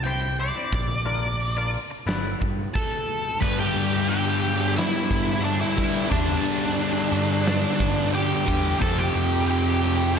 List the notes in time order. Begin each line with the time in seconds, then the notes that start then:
Already playing: C2
0.04 C4 E4 G4 C5 G5, open hi-hat
0.38 C4 E4 G4 C5 D5, open hi-hat
0.56 C4 E4 G4 C5
0.72 A#1, kick, open hi-hat
1.06 D4 F4 A#4 D5, open hi-hat
1.40 open hi-hat
1.57 D4 F4 A#4 D5
1.74 open hi-hat
1.91 muted clean electric guitar stroke
2.07 G1 B3 E4 B4 D5, snare, open hi-hat
2.40 G2, muted clean electric guitar stroke, kick, open hi-hat
2.74 A4 A5, kick, crash
3.41 G2 D3 G3 B4 B5, kick, crash
3.59 G4 G5
3.75 G2, ride
4.10 G4 G5, ride
4.45 snare, ride
4.77 E4 E5, snare, ride
5.11 G2, kick, ride
5.44 D4 D5, ride
5.61 E4 E5
5.76 G2 D3 G3, kick, ride
6.10 E2 G2 D3 G3 D4 D5, kick, ride
6.45 ride
6.79 ride
7.12 G2, ride
7.46 snare, ride
7.80 G2, kick, ride
8.14 G4 G5, ride
8.46 E2 G2 D3 G3, kick, ride
8.80 F2 C3 F3 A4 A5, kick, ride
8.98 G4 G5
9.15 F2, ride
9.49 G4 G5, ride
9.84 snare, ride